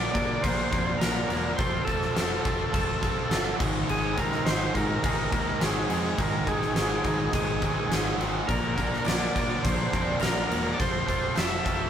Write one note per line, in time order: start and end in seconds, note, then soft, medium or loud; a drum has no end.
0.00 0.12 A#2 medium
0.00 0.12 D3 loud
0.00 0.13 F3 loud
0.00 0.13 A#3 medium
0.00 0.13 D4 loud
0.00 0.14 A#4 medium
0.00 0.44 D5 loud
0.13 0.41 A#2 medium
0.13 0.36 A#2 medium
0.13 0.42 D3 medium
0.13 0.42 F3 medium
0.13 0.42 A#3 medium
0.13 0.43 D4 medium
0.13 0.43 A#4 loud
0.13 kick medium
0.13 crash medium
0.42 0.65 A#1 loud
0.42 0.70 A#2 medium
0.42 0.70 D3 loud
0.42 0.71 F3 loud
0.42 0.71 A#3 medium
0.42 0.71 D4 loud
0.42 0.72 A#4 loud
0.42 0.96 C5 loud
0.42 kick loud
0.42 crash medium
0.71 0.94 F2 medium
0.71 0.98 A#2 medium
0.71 0.99 D3 medium
0.71 0.99 F3 medium
0.71 1.00 A#3 loud
0.71 1.00 D4 loud
0.71 1.00 A#4 medium
0.71 kick loud
0.71 crash medium
0.99 1.22 A#1 medium
0.99 1.27 A#2 medium
0.99 1.27 D3 medium
0.99 1.28 F3 medium
0.99 1.29 A#3 loud
0.99 1.29 D4 medium
0.99 1.53 A#4 medium
0.99 1.29 A#4 loud
0.99 snare loud
0.99 crash medium
1.28 1.51 E1 medium
1.28 1.56 A#2 medium
1.28 1.56 D3 medium
1.28 1.57 F3 medium
1.28 1.57 A#3 loud
1.28 1.57 D4 medium
1.28 1.57 A#4 medium
1.28 crash medium
1.56 1.80 F1 medium
1.56 1.84 F3 medium
1.56 1.86 C4 loud
1.56 1.86 F4 loud
1.56 1.86 A4 medium
1.56 1.84 C5 loud
1.56 kick loud
1.56 crash medium
1.85 2.09 F1 loud
1.85 2.13 F3 medium
1.85 2.15 C4 loud
1.85 2.14 F4 medium
1.85 2.73 A4 medium
1.85 2.15 A4 loud
1.85 kick medium
1.85 crash medium
2.02 snare soft
2.15 2.37 F1 medium
2.15 2.43 F3 medium
2.15 2.44 C4 loud
2.15 2.44 F4 medium
2.15 2.44 A4 loud
2.15 snare loud
2.15 crash medium
2.44 2.66 F1 medium
2.44 2.71 F3 medium
2.44 2.72 C4 medium
2.44 2.72 F4 loud
2.44 2.72 A4 medium
2.44 kick loud
2.44 crash medium
2.72 3.16 F1 loud
2.72 3.00 F3 loud
2.72 3.01 C4 loud
2.72 3.01 F4 loud
2.72 3.01 A4 loud
2.72 3.56 A4 medium
2.72 kick loud
2.72 crash medium
3.01 3.29 F3 medium
3.01 3.29 C4 medium
3.01 3.30 F4 medium
3.01 3.29 A4 loud
3.01 kick medium
3.01 crash medium
3.30 3.52 G1 loud
3.30 3.57 F3 medium
3.30 3.59 C4 loud
3.30 3.58 F4 medium
3.30 3.58 A4 loud
3.30 snare loud
3.30 crash medium
3.58 3.81 G#1 medium
3.58 3.88 G#2 loud
3.58 3.87 D#3 loud
3.58 3.89 G#3 loud
3.58 3.89 C4 loud
3.58 3.89 D#4 loud
3.58 3.90 G#4 loud
3.58 kick loud
3.58 crash loud
3.88 4.31 G#1 medium
3.88 4.16 G#2 medium
3.88 4.16 D#3 loud
3.88 4.17 G#3 loud
3.88 4.18 C4 loud
3.88 4.18 D#4 loud
3.88 4.19 G#4 medium
3.88 4.19 G#4 loud
3.88 crash medium
4.17 4.45 G#2 medium
4.17 4.44 D#3 loud
4.17 4.46 G#3 loud
4.17 4.46 C4 loud
4.17 4.47 D#4 medium
4.17 4.47 G#4 loud
4.17 4.47 A#4 loud
4.17 kick medium
4.17 crash medium
4.32 snare soft
4.45 4.67 G#1 medium
4.45 4.73 G#2 medium
4.45 4.73 D#3 medium
4.45 4.74 G#3 loud
4.45 4.74 C4 loud
4.45 4.75 D#4 loud
4.45 4.75 G#4 loud
4.45 4.75 C5 loud
4.45 snare loud
4.45 crash medium
4.73 5.02 G#2 medium
4.73 4.96 G#2 medium
4.73 5.02 D#3 medium
4.73 5.03 G#3 loud
4.73 5.03 C4 medium
4.73 5.03 D#4 medium
4.73 5.04 G#4 loud
4.73 5.63 A#4 loud
4.73 kick medium
4.73 crash medium
5.03 5.25 G#1 loud
5.03 5.29 G#2 loud
5.03 5.30 D#3 loud
5.03 5.30 G#3 loud
5.03 5.31 C4 loud
5.03 5.31 D#4 loud
5.03 5.31 G#4 loud
5.03 kick loud
5.03 crash medium
5.30 5.53 D#2 medium
5.30 5.58 G#2 medium
5.30 5.59 D#3 medium
5.30 5.59 G#3 loud
5.30 5.59 C4 loud
5.30 5.60 D#4 loud
5.30 5.59 G#4 loud
5.30 kick medium
5.30 crash medium
5.59 5.82 G#1 medium
5.59 5.87 G#2 loud
5.59 5.87 D#3 loud
5.59 5.88 G#3 loud
5.59 5.88 C4 loud
5.59 5.89 D#4 loud
5.59 5.89 G#4 loud
5.59 6.21 G#4 medium
5.59 snare loud
5.59 crash medium
5.88 6.11 F2 medium
5.88 6.16 G#2 medium
5.88 6.17 D#3 medium
5.88 6.17 G#3 medium
5.88 6.17 C4 loud
5.88 6.18 D#4 loud
5.88 6.18 G#4 loud
5.88 crash medium
6.18 6.39 G#1 medium
6.18 6.44 G#2 medium
6.18 6.45 D#3 loud
6.18 6.45 G#3 loud
6.18 6.45 C4 loud
6.18 6.45 D#4 loud
6.18 6.46 G#4 loud
6.18 6.48 A#4 medium
6.18 kick loud
6.18 crash medium
6.45 6.68 G#1 loud
6.45 6.73 G#2 loud
6.45 6.73 D#3 loud
6.45 6.74 G#3 medium
6.45 6.74 C4 loud
6.45 6.74 D#4 loud
6.45 6.75 G#4 loud
6.45 7.34 G#4 loud
6.45 kick medium
6.45 crash medium
6.62 snare soft
6.74 6.97 G#1 medium
6.74 7.01 G#2 medium
6.74 7.01 D#3 loud
6.74 7.02 G#3 medium
6.74 7.02 C4 medium
6.74 7.03 D#4 loud
6.74 7.03 G#4 medium
6.74 snare loud
6.74 crash medium
7.02 7.26 G#1 loud
7.02 7.30 G#2 medium
7.02 7.30 D#3 loud
7.02 7.31 G#3 medium
7.02 7.32 C4 medium
7.02 7.32 D#4 loud
7.02 7.32 G#4 medium
7.02 kick medium
7.02 crash medium
7.31 7.76 G#1 loud
7.31 7.60 G#2 loud
7.31 7.61 D#3 loud
7.31 7.61 G#3 loud
7.31 7.61 C4 loud
7.31 7.62 D#4 loud
7.31 7.62 G#4 loud
7.31 8.16 G#4 medium
7.31 kick loud
7.31 crash medium
7.61 7.89 G#2 medium
7.61 7.90 D#3 medium
7.61 7.90 G#3 medium
7.61 7.91 C4 medium
7.61 7.90 D#4 medium
7.61 7.91 G#4 loud
7.61 kick medium
7.61 crash medium
7.89 8.11 G#1 medium
7.89 8.17 G#2 medium
7.89 8.18 D#3 medium
7.89 8.19 G#3 loud
7.89 8.19 C4 medium
7.89 8.19 D#4 loud
7.89 8.20 G#4 loud
7.89 snare loud
7.89 crash medium
8.18 8.40 G#1 medium
8.18 8.46 G#2 medium
8.18 8.46 D#3 medium
8.18 8.47 G#3 medium
8.18 8.47 C4 medium
8.18 8.47 D#4 medium
8.18 8.47 G#4 medium
8.18 crash medium
8.47 8.91 A#1 medium
8.47 8.76 A#2 medium
8.47 8.76 D3 loud
8.47 8.78 F3 loud
8.47 8.77 A#3 loud
8.47 8.77 D4 medium
8.47 9.07 A#4 medium
8.47 8.78 A#4 loud
8.47 kick medium
8.47 crash medium
8.77 9.04 A#2 medium
8.77 9.05 D3 medium
8.77 9.06 F3 loud
8.77 9.06 A#3 loud
8.77 9.06 D4 loud
8.77 9.06 A#4 medium
8.77 kick medium
8.77 crash medium
8.93 snare soft
9.05 9.26 A#1 medium
9.05 9.33 A#2 loud
9.05 9.34 D3 medium
9.05 9.34 F3 medium
9.05 9.34 A#3 loud
9.05 9.35 D4 medium
9.05 9.35 A#4 medium
9.05 9.65 D5 medium
9.05 snare loud
9.05 clap medium
9.05 crash medium
9.35 9.63 A#2 medium
9.35 9.56 A#2 medium
9.35 9.63 D3 medium
9.35 9.63 F3 medium
9.35 9.64 A#3 medium
9.35 9.64 D4 medium
9.35 9.64 A#4 medium
9.35 kick loud
9.35 crash medium
9.64 9.85 A#1 loud
9.64 9.90 A#2 medium
9.64 9.91 D3 medium
9.64 9.92 F3 loud
9.64 9.92 A#3 loud
9.64 9.93 D4 loud
9.64 9.92 A#4 loud
9.64 10.17 C5 medium
9.64 kick loud
9.64 crash medium
9.91 10.14 F2 medium
9.91 10.19 A#2 medium
9.91 10.20 D3 medium
9.91 10.20 F3 loud
9.91 10.21 A#3 medium
9.91 10.21 D4 loud
9.91 10.21 A#4 loud
9.91 kick medium
9.91 crash medium
10.20 10.42 A#1 medium
10.20 10.48 A#2 loud
10.20 10.47 D3 medium
10.20 10.48 F3 medium
10.20 10.48 A#3 medium
10.20 10.49 D4 loud
10.20 10.73 A#4 medium
10.20 10.49 A#4 loud
10.20 snare loud
10.20 clap loud
10.20 crash medium
10.48 10.71 E1 loud
10.48 10.76 A#2 medium
10.48 10.76 D3 medium
10.48 10.76 F3 medium
10.48 10.77 A#3 loud
10.48 10.77 D4 medium
10.48 10.77 A#4 loud
10.48 crash medium
10.74 11.05 F3 medium
10.74 11.06 C4 loud
10.74 11.05 F4 loud
10.74 10.80 D5 medium
10.78 11.01 F1 medium
10.78 11.06 A4 loud
10.78 11.39 C5 loud
10.78 kick loud
10.78 crash medium
11.06 11.29 F1 medium
11.06 11.33 F3 loud
11.06 11.34 C4 loud
11.06 11.34 F4 loud
11.06 11.34 A4 loud
11.06 kick medium
11.06 crash medium
11.35 11.58 F1 medium
11.35 11.63 F3 medium
11.35 11.64 C4 medium
11.35 11.64 F4 loud
11.35 11.65 A4 loud
11.35 11.90 E5 medium
11.35 snare loud
11.35 clap medium
11.35 crash medium
11.64 11.87 F1 medium
11.64 11.90 F3 loud
11.64 11.90 C4 medium
11.64 11.90 F4 medium
11.64 11.90 A4 medium
11.64 kick medium
11.64 crash medium